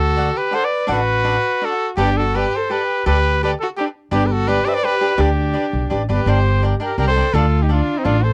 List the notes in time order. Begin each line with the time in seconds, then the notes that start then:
Already playing: D2 F#4 A4
0.17 D4 A4 D5 F#5
0.36 G4 B4
0.51 D4 A4 C5 D5 F#5
0.63 B4 D5
0.87 A1 D4 A4 D5 F#5
0.92 F#4 B4
1.24 D4 A4 D5 F#5
1.61 D4 F#4 A4 D5 F#5
1.97 G1 G4 A4 B4 D5
2.01 D4
2.17 F#4 A4
2.34 G4 A4 B4 D5
2.38 G4
2.55 A4 C5
2.70 G4 A4 B4 D5
3.06 D2 G4 A4 B4 D5
3.43 G4 A4 B4 D5
3.59 F#4 A4
3.76 D4 G4 A4 B4 D5
4.11 G1 D4 G4 B4 D5
4.26 G4 B4
4.31 F#4 A4
4.47 D4 G4 B4 D5
4.64 D4 G4 B4 D5 E5
4.69 C5
4.74 B4 D5
4.83 D4 G4 B4 D5
5.01 D4 G4 B4 D5
5.18 D2 D4 G4 B4 D5
5.53 D4 G4 B4 D5
5.73 B1
5.90 A1 D4 G4 B4 D5
6.09 G1 D4 G4 B4 D5
6.26 G1 D4 G4 A#4 C5 D5 G5
6.63 D4 A#4 D5 G5
6.80 D4 G4 A#4 D5 G5
6.98 C2 D4 G4 A#4 D5 G5
7.07 A4 C5
7.16 D4 A#4 D5 G5
7.33 D2 D4 F4 A4 D5 F5
7.62 D#4 G4
7.69 D4 F4 A4 D5 F5
7.97 C4 D#4
8.04 A1 D4 F4 A4 D5 F5
8.22 A4 C5